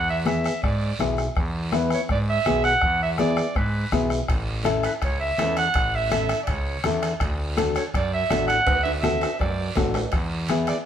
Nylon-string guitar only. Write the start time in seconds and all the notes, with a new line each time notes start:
0.25 B3 E4 G#4
0.99 B3 E4 G#4
1.72 B3 E4 B4
2.46 B3 E4 G#4
3.19 B3 E4 G#4
3.92 B3 E4 G#4
4.64 C#4 E4 A4
5.38 C#4 E4 A4
6.10 C#4 E4 A4
6.85 C#4 E4 A4
7.57 D4 F#4 A4
8.30 D4 F#4 A4
9.03 D4 F#4 A4
9.77 D4 F#4 A4
10.50 B3 E4 G#4